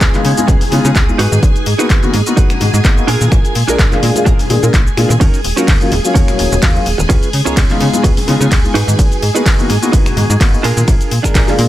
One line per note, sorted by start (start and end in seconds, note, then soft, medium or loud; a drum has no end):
0.00 0.09 C#2 medium
0.00 0.19 C#4 medium
0.00 0.19 F4 medium
0.00 0.20 G#4 medium
0.00 5.20 G#4 medium
0.00 0.20 B4 loud
0.00 5.20 G#5 medium
0.00 kick loud
0.00 clap loud
0.00 closed hi-hat medium
0.00 shaker medium
0.14 0.34 G#3 medium
0.14 0.34 B3 medium
0.14 0.35 D#4 medium
0.14 0.35 F4 medium
0.14 clap soft
0.14 closed hi-hat soft
0.14 high conga medium
0.14 low conga medium
0.14 shaker soft
0.24 0.33 C#3 loud
0.24 open hi-hat loud
0.24 shaker loud
0.37 0.45 G#3 medium
0.37 0.45 B3 medium
0.37 0.46 D#4 medium
0.37 0.46 F4 loud
0.37 closed hi-hat medium
0.37 low conga medium
0.37 shaker soft
0.37 shaker medium
0.47 0.56 C#2 loud
0.47 0.61 C#4 medium
0.47 0.61 F4 medium
0.47 0.62 G#4 medium
0.47 0.62 B4 loud
0.47 kick loud
0.47 closed hi-hat medium
0.47 shaker medium
0.61 open hi-hat medium
0.61 low conga loud
0.61 shaker soft
0.71 0.80 C#3 medium
0.71 0.83 G#3 medium
0.71 0.83 B3 medium
0.71 0.83 D#4 medium
0.71 0.83 F4 loud
0.71 muted clean electric guitar stroke soft
0.71 open hi-hat loud
0.71 high conga medium
0.71 shaker loud
0.85 0.91 C#3 loud
0.85 0.93 G#3 medium
0.85 0.93 B3 medium
0.85 0.93 D#4 medium
0.85 0.93 F4 loud
0.85 shaker soft
0.85 shaker medium
0.95 1.11 C#2 loud
0.95 kick loud
0.95 clap loud
0.95 closed hi-hat medium
0.95 shaker medium
1.08 1.16 G#3 medium
1.08 1.16 B3 medium
1.08 1.17 D#4 medium
1.08 1.17 F4 medium
1.08 shaker soft
1.18 1.27 G#2 medium
1.18 1.66 D#4 medium
1.18 1.66 F#4 medium
1.18 1.67 G#4 medium
1.18 1.67 B4 loud
1.18 finger snap medium
1.18 open hi-hat loud
1.18 shaker medium
1.31 1.39 G#2 medium
1.31 high conga loud
1.31 shaker soft
1.31 shaker medium
1.43 1.51 G#1 loud
1.43 kick loud
1.43 closed hi-hat medium
1.43 shaker medium
1.55 closed hi-hat soft
1.55 shaker soft
1.66 1.74 G#2 medium
1.66 open hi-hat loud
1.66 shaker medium
1.78 1.87 A#3 medium
1.78 1.87 B3 medium
1.78 2.08 D#4 medium
1.78 1.87 D#4 medium
1.78 2.08 F#4 medium
1.78 1.88 F#4 medium
1.78 2.09 G#4 medium
1.78 2.09 B4 loud
1.78 finger snap medium
1.78 closed hi-hat soft
1.78 shaker medium
1.90 1.98 G#1 medium
1.90 kick loud
1.90 clap loud
1.90 closed hi-hat medium
1.90 shaker medium
2.02 2.11 A#3 medium
2.02 2.11 B3 medium
2.02 2.11 D#4 medium
2.02 2.11 F#4 loud
2.02 closed hi-hat soft
2.02 high conga medium
2.02 shaker soft
2.14 2.21 G#2 loud
2.14 open hi-hat loud
2.14 shaker medium
2.26 2.35 A#3 medium
2.26 2.35 B3 medium
2.26 2.35 D#4 medium
2.26 2.35 F#4 loud
2.26 closed hi-hat medium
2.26 shaker soft
2.26 shaker medium
2.37 2.45 G#1 loud
2.37 2.50 D#4 medium
2.37 2.50 F#4 medium
2.37 2.50 G#4 medium
2.37 2.51 B4 medium
2.37 kick loud
2.37 closed hi-hat medium
2.37 shaker medium
2.37 shaker soft
2.50 finger snap medium
2.50 closed hi-hat medium
2.50 low conga medium
2.50 shaker soft
2.60 2.69 G#2 loud
2.60 muted clean electric guitar stroke soft
2.60 open hi-hat loud
2.60 high conga medium
2.60 low conga medium
2.60 shaker medium
2.74 2.80 G#2 loud
2.74 shaker medium
2.74 shaker soft
2.83 3.00 G#1 medium
2.83 2.94 A#3 medium
2.83 2.94 B3 medium
2.83 2.94 D#4 medium
2.83 kick loud
2.83 clap loud
2.83 closed hi-hat medium
2.83 shaker soft
2.85 2.94 F#4 medium
2.85 shaker medium
2.97 3.05 A#3 medium
2.97 3.05 B3 medium
2.97 3.06 D#4 medium
2.97 3.06 F#4 medium
2.97 shaker soft
3.07 3.16 A#2 medium
3.07 3.55 D4 medium
3.07 3.55 F4 medium
3.07 3.56 G#4 medium
3.07 3.56 A#4 loud
3.07 open hi-hat loud
3.07 shaker medium
3.21 3.28 A#2 medium
3.21 high conga loud
3.21 shaker soft
3.21 shaker medium
3.32 3.40 A#1 loud
3.32 finger snap medium
3.32 kick loud
3.32 closed hi-hat medium
3.32 shaker medium
3.45 closed hi-hat soft
3.45 shaker soft
3.55 3.63 A#2 medium
3.55 open hi-hat loud
3.55 shaker medium
3.67 3.77 A#1 soft
3.67 3.81 G#3 medium
3.67 3.82 A#3 medium
3.67 3.97 D4 medium
3.67 3.82 D4 medium
3.67 3.97 F4 medium
3.67 3.98 G#4 medium
3.67 3.82 A#4 medium
3.67 3.98 A#4 loud
3.67 finger snap medium
3.67 closed hi-hat soft
3.67 shaker medium
3.79 3.87 A#1 medium
3.79 kick loud
3.79 clap loud
3.79 closed hi-hat medium
3.79 shaker medium
3.92 4.12 G#3 medium
3.92 4.13 A#3 medium
3.92 4.13 D4 medium
3.92 4.13 F4 medium
3.92 clap soft
3.92 closed hi-hat soft
3.92 high conga loud
3.92 low conga medium
3.92 shaker soft
4.03 4.11 A#2 loud
4.03 open hi-hat loud
4.03 shaker medium
4.15 4.23 G#3 medium
4.15 4.24 A#3 medium
4.15 4.24 D4 medium
4.15 4.24 F4 loud
4.15 closed hi-hat medium
4.15 low conga medium
4.15 shaker soft
4.15 shaker medium
4.25 4.34 A#1 loud
4.25 4.39 D4 medium
4.25 4.39 F4 medium
4.25 4.39 G#4 medium
4.25 4.40 A#4 loud
4.25 kick loud
4.25 closed hi-hat medium
4.25 shaker medium
4.39 open hi-hat medium
4.39 low conga loud
4.39 shaker soft
4.49 4.58 A#2 medium
4.49 4.61 G#3 medium
4.49 4.61 A#3 medium
4.49 4.61 D4 medium
4.49 4.61 G#4 medium
4.49 muted clean electric guitar stroke soft
4.49 open hi-hat loud
4.49 high conga medium
4.49 shaker medium
4.62 4.69 A#2 medium
4.62 4.71 G#3 medium
4.62 4.71 A#3 medium
4.62 4.71 D4 medium
4.62 4.71 A#4 medium
4.62 shaker medium
4.74 4.89 A#1 medium
4.74 kick loud
4.74 clap loud
4.74 closed hi-hat medium
4.74 shaker medium
4.74 shaker soft
4.86 shaker soft
4.97 5.05 A#2 medium
4.97 5.07 G#3 medium
4.97 5.07 A#3 medium
4.97 5.07 D4 medium
4.97 5.07 F4 medium
4.97 finger snap medium
4.97 open hi-hat loud
4.97 shaker medium
5.09 5.17 A#2 medium
5.09 muted clean electric guitar stroke medium
5.09 high conga loud
5.09 shaker soft
5.09 shaker medium
5.20 5.29 D#2 loud
5.20 5.39 C#4 loud
5.20 5.39 D#4 loud
5.20 5.39 F#4 loud
5.20 11.68 G#4 medium
5.20 5.40 A#4 loud
5.20 11.68 G#5 medium
5.20 kick loud
5.20 closed hi-hat medium
5.20 ride medium
5.20 shaker medium
5.34 closed hi-hat soft
5.34 shaker soft
5.44 5.52 D#1 medium
5.44 open hi-hat loud
5.44 shaker medium
5.56 5.65 F#3 medium
5.56 5.65 A#3 medium
5.56 5.86 C#4 medium
5.56 5.65 C#4 medium
5.56 5.86 D#4 medium
5.56 5.65 F4 medium
5.56 5.87 F#4 medium
5.56 5.87 A#4 loud
5.56 finger snap medium
5.56 closed hi-hat soft
5.56 shaker medium
5.68 5.76 D#2 medium
5.68 kick loud
5.68 clap loud
5.68 closed hi-hat medium
5.68 ride medium
5.68 shaker medium
5.81 5.89 F#3 medium
5.81 5.89 A#3 medium
5.81 5.89 C#4 medium
5.81 5.89 F4 loud
5.81 closed hi-hat soft
5.81 high conga medium
5.81 shaker soft
5.92 5.99 D#1 loud
5.92 open hi-hat loud
5.92 shaker medium
6.04 6.13 F#3 medium
6.04 6.13 A#3 medium
6.04 6.13 C#4 medium
6.04 6.13 F4 loud
6.04 closed hi-hat medium
6.04 shaker soft
6.04 shaker medium
6.14 6.23 D#2 loud
6.14 6.60 F#3 medium
6.14 6.28 C#4 medium
6.14 6.28 D#4 medium
6.14 6.28 F#4 medium
6.14 6.29 A#4 loud
6.14 kick loud
6.14 closed hi-hat medium
6.14 ride medium
6.14 shaker medium
6.28 finger snap medium
6.28 closed hi-hat medium
6.28 low conga medium
6.28 shaker soft
6.38 6.47 D#1 medium
6.38 muted clean electric guitar stroke soft
6.38 open hi-hat loud
6.38 high conga medium
6.38 low conga medium
6.38 shaker medium
6.52 6.58 D#1 loud
6.52 shaker soft
6.52 shaker medium
6.62 6.78 D#2 medium
6.62 6.72 F#3 medium
6.62 6.72 A#3 medium
6.62 6.72 C#4 medium
6.62 6.72 F4 loud
6.62 kick loud
6.62 clap loud
6.62 closed hi-hat medium
6.62 ride medium
6.62 shaker medium
6.75 6.83 F#3 medium
6.75 6.83 A#3 medium
6.75 6.83 C#4 medium
6.75 6.83 F4 medium
6.75 shaker soft
6.86 6.94 D#1 medium
6.86 open hi-hat loud
6.86 shaker medium
6.98 7.05 D#1 medium
6.98 muted clean electric guitar stroke medium
6.98 high conga loud
6.98 shaker soft
6.98 shaker medium
7.09 7.18 C#2 loud
7.09 7.28 C#4 loud
7.09 7.28 F4 loud
7.09 7.28 G#4 loud
7.09 7.29 B4 loud
7.09 finger snap medium
7.09 kick loud
7.09 closed hi-hat medium
7.09 ride medium
7.09 shaker medium
7.22 closed hi-hat soft
7.22 shaker soft
7.33 7.41 C#3 medium
7.33 open hi-hat loud
7.33 shaker loud
7.45 7.55 C#2 soft
7.45 7.59 G#3 medium
7.45 7.59 B3 medium
7.45 7.75 C#4 medium
7.45 7.59 D#4 medium
7.45 7.75 F4 medium
7.45 7.75 G#4 medium
7.45 7.60 A#4 medium
7.45 7.76 C#5 loud
7.45 finger snap medium
7.45 closed hi-hat soft
7.45 shaker medium
7.57 7.65 C#2 medium
7.57 kick loud
7.57 clap loud
7.57 closed hi-hat medium
7.57 ride medium
7.57 shaker medium
7.69 7.90 G#3 medium
7.69 7.90 B3 medium
7.69 7.91 D#4 medium
7.69 7.91 F4 medium
7.69 clap soft
7.69 closed hi-hat soft
7.69 high conga medium
7.69 low conga medium
7.69 shaker soft
7.80 7.88 C#3 loud
7.80 open hi-hat loud
7.80 shaker medium
7.93 8.01 G#3 medium
7.93 8.01 B3 medium
7.93 8.02 D#4 medium
7.93 8.02 F4 loud
7.93 closed hi-hat medium
7.93 low conga medium
7.93 shaker soft
7.93 shaker medium
8.03 8.12 C#2 medium
8.03 8.17 C#4 medium
8.03 8.17 F4 medium
8.03 8.17 G#4 medium
8.03 8.18 B4 loud
8.03 kick loud
8.03 closed hi-hat medium
8.03 ride medium
8.03 shaker medium
8.17 open hi-hat medium
8.17 low conga medium
8.17 shaker soft
8.27 8.36 C#3 loud
8.27 8.39 G#3 medium
8.27 8.39 B3 medium
8.27 8.39 D#4 medium
8.27 8.39 F4 medium
8.27 muted clean electric guitar stroke soft
8.27 open hi-hat loud
8.27 high conga medium
8.27 shaker medium
8.40 8.47 C#3 loud
8.40 8.48 G#3 medium
8.40 8.49 B3 medium
8.40 8.49 D#4 medium
8.40 8.49 F4 loud
8.40 shaker soft
8.40 shaker medium
8.51 8.67 C#2 medium
8.51 kick loud
8.51 clap loud
8.51 closed hi-hat medium
8.51 ride medium
8.51 shaker medium
8.64 8.72 G#3 medium
8.64 8.72 B3 medium
8.64 8.72 D#4 medium
8.64 8.72 F4 medium
8.64 shaker soft
8.74 8.83 G#2 medium
8.74 9.22 D#4 loud
8.74 9.22 F#4 medium
8.74 9.23 G#4 medium
8.74 9.23 B4 loud
8.74 finger snap medium
8.74 open hi-hat loud
8.74 shaker loud
8.88 8.94 G#2 medium
8.88 high conga loud
8.88 shaker medium
8.88 shaker soft
8.99 9.07 G#1 loud
8.99 kick loud
8.99 closed hi-hat medium
8.99 ride medium
8.99 shaker medium
9.11 closed hi-hat soft
9.11 shaker soft
9.22 9.30 G#2 medium
9.22 open hi-hat loud
9.22 shaker medium
9.34 9.43 A#3 medium
9.34 9.43 B3 medium
9.34 9.64 D#4 medium
9.34 9.43 D#4 medium
9.34 9.64 F#4 medium
9.34 9.43 F#4 medium
9.34 9.65 G#4 medium
9.34 9.65 B4 loud
9.34 finger snap medium
9.34 closed hi-hat soft
9.34 shaker medium
9.46 9.54 G#1 medium
9.46 kick loud
9.46 clap loud
9.46 closed hi-hat medium
9.46 ride medium
9.46 shaker medium
9.58 9.67 A#3 medium
9.58 9.67 B3 medium
9.58 9.67 D#4 medium
9.58 9.67 F#4 loud
9.58 closed hi-hat soft
9.58 high conga medium
9.58 shaker soft
9.70 9.77 G#2 loud
9.70 open hi-hat loud
9.70 shaker loud
9.82 9.90 A#3 loud
9.82 9.91 B3 medium
9.82 9.91 D#4 medium
9.82 9.91 F#4 loud
9.82 closed hi-hat medium
9.82 shaker medium
9.92 10.01 G#1 loud
9.92 10.06 D#4 medium
9.92 10.06 F#4 medium
9.92 10.38 F#4 medium
9.92 10.06 G#4 medium
9.92 10.07 B4 medium
9.92 kick loud
9.92 closed hi-hat medium
9.92 ride medium
9.92 shaker medium
10.06 finger snap medium
10.06 closed hi-hat medium
10.06 low conga medium
10.06 shaker soft
10.16 10.25 G#2 loud
10.16 muted clean electric guitar stroke soft
10.16 open hi-hat loud
10.16 high conga medium
10.16 low conga medium
10.16 shaker loud
10.30 10.36 G#2 loud
10.30 shaker soft
10.30 shaker medium
10.40 10.56 G#1 loud
10.40 10.50 A#3 medium
10.40 10.50 B3 medium
10.40 10.50 D#4 medium
10.40 10.50 F#4 loud
10.40 kick loud
10.40 clap loud
10.40 closed hi-hat medium
10.40 ride medium
10.40 shaker medium
10.53 10.61 A#3 medium
10.53 10.61 B3 medium
10.53 10.61 D#4 medium
10.53 10.61 F#4 medium
10.53 shaker soft
10.63 10.72 A#2 medium
10.63 11.11 D4 medium
10.63 11.11 F4 medium
10.63 11.12 G#4 medium
10.63 11.12 A#4 loud
10.63 open hi-hat loud
10.63 shaker loud
10.77 10.83 A#2 medium
10.77 high conga medium
10.77 shaker soft
10.77 shaker medium
10.88 10.96 A#1 loud
10.88 finger snap medium
10.88 kick loud
10.88 closed hi-hat medium
10.88 ride medium
10.88 shaker medium
11.01 closed hi-hat soft
11.01 shaker soft
11.11 11.19 A#2 medium
11.11 open hi-hat loud
11.11 shaker loud
11.23 11.33 A#1 soft
11.23 11.37 G#3 medium
11.23 11.37 A#3 medium
11.23 11.53 D4 medium
11.23 11.37 D4 medium
11.23 11.53 F4 medium
11.23 11.53 G#4 medium
11.23 11.38 A#4 medium
11.23 11.54 A#4 loud
11.23 finger snap medium
11.23 kick medium
11.23 closed hi-hat soft
11.23 shaker medium
11.35 11.43 A#1 medium
11.35 kick loud
11.35 clap loud
11.35 closed hi-hat medium
11.35 ride medium
11.35 shaker medium
11.47 11.68 G#3 medium
11.47 11.68 A#3 medium
11.47 11.68 D4 medium
11.47 11.68 F4 medium
11.47 clap soft
11.47 closed hi-hat soft
11.47 high conga medium
11.47 low conga medium
11.47 shaker soft
11.58 11.66 A#2 loud
11.58 open hi-hat loud
11.58 shaker medium